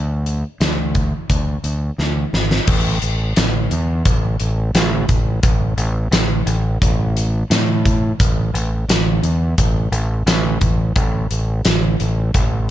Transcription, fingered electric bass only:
Already playing: D2
0.60 D2
1.30 D2
1.64 D2
1.98 D2
2.33 G#1
2.68 A1
3.02 A1
3.37 A1
3.71 E2
4.05 A1
4.40 A1
4.75 A1
5.09 A1
5.43 A1
5.77 A1
6.11 A1
6.46 A1
6.82 A1
7.50 A2
8.20 A1
8.54 A1
8.88 A1
9.23 E2
9.58 A1
9.92 A1
10.26 A1
10.62 A1
10.96 A1
11.31 A1
11.65 A1
12.00 A1
12.34 A1

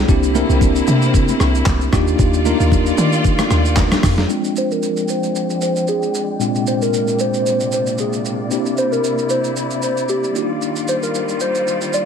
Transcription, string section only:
Already playing: D3
0.09 A#3 C4 E4
1.93 D#3 G3 F4 D5
4.29 F3 G#3 D5 G5
6.40 C3 A#3
8.51 E4
10.35 D#3 G3 F4

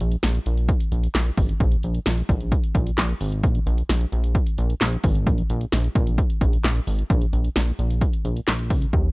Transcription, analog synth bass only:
0.00 A#1
0.23 A#1
0.46 A#1
0.92 A#1
1.15 A#1
1.38 G#1
1.60 A#1
1.83 A#1
2.06 A#1
2.29 A#1
2.75 A#1
2.98 A#1
3.21 G#1
3.44 A#1
3.66 A#1
3.89 A#1
4.12 A#1
4.58 A#1
4.81 A#1
5.04 G#1
5.27 A#1
5.50 A#1
5.73 A#1
5.95 A#1
6.41 A#1
6.64 A#1
6.87 G#1
7.10 A#1
7.33 A#1
7.56 A#1
7.79 A#1
8.25 A#1
8.48 A#1
8.70 C#2
8.93 D#2

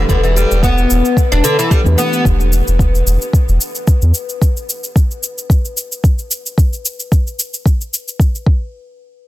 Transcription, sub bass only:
0.09 E1
0.51 E1
0.91 E1
1.32 E1
1.86 E2
2.25 E1
2.68 E1
3.06 E1
3.48 E1
4.02 E2

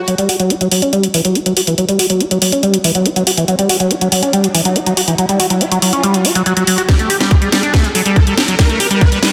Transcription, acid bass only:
0.08 F#3
0.18 G3
0.29 F#4
0.40 F#3
0.50 F#4
0.61 F#3
0.72 F#3
0.82 C#4
0.93 G3
1.03 F#3
1.14 E3
1.25 F#3
1.35 F#4
1.46 F#3
1.57 F#4
1.67 E3
1.78 F#3
1.89 G3
1.99 F#4
2.10 F#3
2.21 F#4
2.31 F#3
2.42 F#3
2.52 C#4
2.63 G3
2.74 F#3
2.84 E3
2.95 F#3
3.06 F#4
3.16 F#3
3.27 F#4
3.38 E3
3.48 F#3
3.59 G3
3.69 F#4
3.80 F#3
3.91 F#4
4.01 F#3
4.12 F#3
4.23 C#4
4.33 G3
4.44 F#3
4.55 E3
4.65 F#3
4.76 F#4
4.86 F#3
4.97 F#4
5.08 E3
5.18 F#3
5.29 G3
5.40 F#4
5.50 F#3
5.61 F#4
5.72 F#3
5.82 F#3
5.93 C#4
6.03 G3
6.14 F#3
6.25 F#4
6.35 F#3
6.46 F#3
6.57 F#3
6.67 F#3
6.78 F#4
6.89 G3
6.99 A3
7.10 G4
7.20 G3
7.31 G4
7.42 G3
7.52 G3
7.63 D4
7.74 A3
7.84 G3
7.95 F#3
8.06 G3
8.16 G4
8.27 G3
8.38 G4
8.48 F#3
8.59 G3
8.69 A3
8.80 G4
8.91 G3
9.01 G4
9.12 G3
9.23 G3

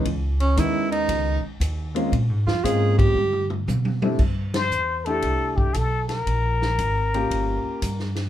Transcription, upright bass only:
0.05 C#2
0.57 D#2
1.08 C#2
1.43 muted upright bass stroke
1.60 D#2
2.12 A#2
2.30 G#2
2.46 F2
2.64 G#2
3.14 G2
3.68 B2
4.19 G2
4.71 E2
5.23 C2
5.75 B1
6.27 A#1
6.79 G#1
7.31 G1
7.64 muted upright bass stroke
7.82 G2

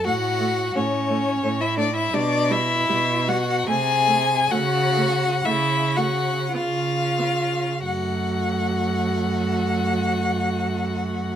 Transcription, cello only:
0.05 A2
0.75 A2
1.44 A2
2.13 B2
2.89 B2
3.68 C3
4.51 C#3
5.44 C#3
6.53 C#3
7.84 F#2

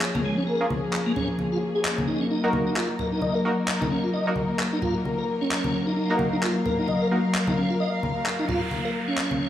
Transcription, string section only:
Already playing: F3 A#3 C#4 G#4
2.31 F#3 D#4 A#4
5.97 F5

